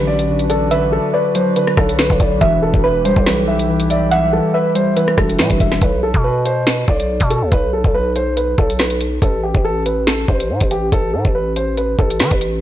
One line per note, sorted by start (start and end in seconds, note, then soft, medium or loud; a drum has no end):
0.00 1.00 A1 loud
0.00 0.29 D3 loud
0.00 0.71 F#3 medium
0.00 2.38 D4 medium
0.00 2.38 F#4 medium
0.00 0.67 B4 loud
0.00 5.78 B4 medium
0.07 0.47 D5 medium
0.19 closed hi-hat medium
0.29 0.70 D3 medium
0.39 closed hi-hat medium
0.49 0.67 A4 medium
0.49 1.56 D5 medium
0.49 closed hi-hat medium
0.71 0.91 D3 loud
0.71 0.88 B4 loud
0.71 1.11 E5 loud
0.71 closed hi-hat medium
0.92 1.55 D3 medium
0.92 1.09 A4 medium
1.14 1.31 B4 medium
1.14 2.37 D5 medium
1.35 2.42 F#3 medium
1.35 1.52 C5 medium
1.35 closed hi-hat medium
1.56 1.97 D3 medium
1.56 1.73 B4 medium
1.56 closed hi-hat medium
1.67 cross-stick medium
1.77 2.09 B1 loud
1.77 1.95 A4 medium
1.77 kick loud
1.77 cross-stick medium
1.89 closed hi-hat medium
1.98 2.41 D3 medium
1.98 2.16 B4 medium
1.98 snare loud
1.98 closed hi-hat medium
2.06 closed hi-hat medium
2.10 2.19 B1 loud
2.10 kick medium
2.10 closed hi-hat medium
2.20 2.40 B1 loud
2.20 2.41 D5 medium
2.20 kick loud
2.20 closed hi-hat medium
2.41 2.72 E1 loud
2.41 2.61 E3 loud
2.41 5.78 E3 medium
2.41 5.78 E4 medium
2.41 5.78 G4 medium
2.41 2.81 E5 loud
2.41 2.58 E5 medium
2.41 kick loud
2.41 closed hi-hat medium
2.62 3.25 E3 medium
2.62 2.80 A4 medium
2.74 3.15 E1 loud
2.74 kick loud
2.84 4.07 B4 loud
2.84 3.01 B4 loud
3.05 4.11 G3 medium
3.05 3.22 C5 medium
3.05 closed hi-hat medium
3.16 4.40 B1 loud
3.16 kick medium
3.26 3.68 E3 medium
3.26 3.44 B4 medium
3.26 snare loud
3.26 closed hi-hat medium
3.48 3.88 E5 medium
3.59 closed hi-hat medium
3.69 4.11 E3 medium
3.80 closed hi-hat medium
3.90 4.07 D5 medium
3.90 4.97 E5 medium
3.90 closed hi-hat medium
4.11 4.32 E3 medium
4.11 4.29 E5 loud
4.11 4.51 F#5 loud
4.11 closed hi-hat medium
4.33 4.95 E3 medium
4.33 4.50 A4 medium
4.54 4.71 B4 medium
4.54 4.94 E5 medium
4.75 5.82 G3 medium
4.75 4.92 C5 medium
4.75 closed hi-hat medium
4.96 5.38 E3 medium
4.96 5.14 B4 medium
4.96 closed hi-hat medium
5.08 cross-stick medium
5.18 5.40 E1 loud
5.18 5.35 A4 medium
5.18 kick medium
5.18 cross-stick medium
5.30 closed hi-hat medium
5.39 5.50 B2 loud
5.39 5.82 E3 medium
5.39 5.56 B4 medium
5.39 snare loud
5.39 closed hi-hat medium
5.50 5.60 E1 loud
5.50 kick medium
5.50 closed hi-hat medium
5.60 5.81 E1 loud
5.60 5.82 E5 medium
5.60 kick loud
5.60 closed hi-hat medium
5.72 snare medium
5.82 6.13 B1 loud
5.82 5.99 B4 medium
5.82 kick loud
5.82 closed hi-hat medium
6.03 6.20 A4 medium
6.14 6.85 B2 loud
6.14 kick loud
6.24 6.41 B4 medium
6.45 6.63 C5 medium
6.45 closed hi-hat medium
6.67 6.84 B4 medium
6.67 snare loud
6.67 closed hi-hat medium
6.88 7.19 B1 loud
6.88 7.28 D5 medium
6.88 kick medium
7.00 closed hi-hat medium
7.20 7.43 B2 loud
7.20 kick medium
7.20 closed hi-hat medium
7.30 7.48 A4 medium
7.30 closed hi-hat medium
7.42 7.51 D2 loud
7.52 7.83 B1 loud
7.52 7.69 B4 loud
7.52 kick loud
7.52 closed hi-hat medium
7.73 7.90 A4 medium
7.84 8.55 B1 loud
7.84 kick loud
7.94 8.12 B4 medium
8.16 8.33 C5 medium
8.16 closed hi-hat medium
8.37 8.54 B4 medium
8.37 closed hi-hat medium
8.58 9.19 B1 loud
8.58 8.75 A4 medium
8.58 kick medium
8.70 closed hi-hat medium
8.79 8.97 B4 medium
8.79 snare loud
8.79 closed hi-hat medium
8.90 closed hi-hat medium
9.01 closed hi-hat medium
9.22 9.53 A1 loud
9.22 9.39 A4 medium
9.22 kick loud
9.22 closed hi-hat medium
9.43 9.61 G4 medium
9.55 10.25 A1 loud
9.55 kick loud
9.64 9.82 A4 medium
9.86 10.03 B4 medium
9.86 closed hi-hat medium
10.07 10.24 A4 medium
10.07 snare loud
10.07 closed hi-hat medium
10.28 10.51 A1 loud
10.28 10.69 C5 medium
10.28 kick medium
10.40 closed hi-hat medium
10.50 10.60 A2 loud
10.60 10.91 A1 loud
10.60 kick medium
10.60 closed hi-hat medium
10.71 10.88 G4 medium
10.71 closed hi-hat medium
10.92 11.15 A1 loud
10.92 11.09 A4 loud
10.92 kick loud
10.92 closed hi-hat medium
11.13 11.24 A2 loud
11.13 11.31 A4 medium
11.25 11.96 A1 loud
11.25 kick loud
11.35 11.52 B4 medium
11.56 11.73 C5 medium
11.56 closed hi-hat medium
11.77 11.95 B4 medium
11.77 closed hi-hat medium
11.98 12.21 A1 loud
11.98 12.16 A4 medium
11.98 kick medium
12.10 closed hi-hat medium
12.20 12.31 E3 loud
12.20 12.37 B4 medium
12.20 snare loud
12.20 closed hi-hat medium
12.31 12.61 A1 loud
12.31 kick medium
12.31 closed hi-hat medium
12.41 closed hi-hat medium